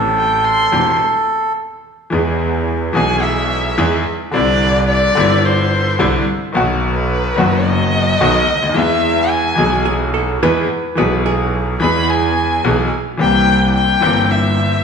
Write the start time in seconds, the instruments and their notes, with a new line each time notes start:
Already playing: grand piano A1 A2 E3 A3 C4 G4, double bass A1, bandoneon A4
0.17 violin G5
0.44 violin C6
0.72 grand piano E1 E2 E3 A3 C4 G4, double bass E1
2.10 double bass E2, grand piano E2 E3 G#3 B3
2.14 grand piano G#4
2.93 grand piano B1 B2 E3 G#3 B3 G#4, double bass B1, violin G#5
3.23 violin E5
3.78 grand piano E2 E3 G#3 B3 G#4, double bass E2
4.31 double bass C2, grand piano C2 C3 D3 G3 C4, violin D5
4.36 grand piano E4
4.89 violin D5
5.15 double bass G1, grand piano G1 G2 D3 G3 C4
5.20 grand piano E4
5.45 violin C5
5.99 double bass C2, grand piano C2 C3 D3 G3 C4 E4
6.52 grand piano B1 B2 D#3 F#3 B3, double bass B1
6.57 grand piano F#4
6.85 violin B4
7.36 grand piano F#1 F#2 D#3 F#3 B3, double bass F#1
7.40 grand piano F#4
7.66 violin D#5
8.20 double bass B1, grand piano B1 B2 D#3 F#3 B3 F#4
8.48 double bass D2
8.56 grand piano C#2
8.62 grand piano D2
8.69 grand piano D#2
8.74 double bass E2, grand piano E2 E3 G#3 B3 G#4, violin E5
9.30 violin G#5
9.56 double bass B1, grand piano B1 B2 E3 G#3 B3
9.60 grand piano G#4
9.86 hollow-body jazz guitar G#4
10.14 hollow-body jazz guitar A4
10.42 double bass E2, grand piano E2 E3 G#3 B3 G#4, hollow-body jazz guitar B4
10.95 grand piano B1 B2 E3 G#3 B3, double bass B1, hollow-body jazz guitar B4
10.99 grand piano G#4
11.26 hollow-body jazz guitar G#4
11.80 double bass E2, grand piano E2 E3 G#3 B3 G#4, violin B5
12.09 violin G#5
12.64 grand piano B1 B2 E3 G#3 B3 G#4, double bass B1
13.17 grand piano C2 C3 E3 A#3 C4 G4, double bass C2
13.21 violin G5
13.76 violin G5
14.00 double bass G1, grand piano G1 G2 E3 A#3 C4 G4
14.31 violin E5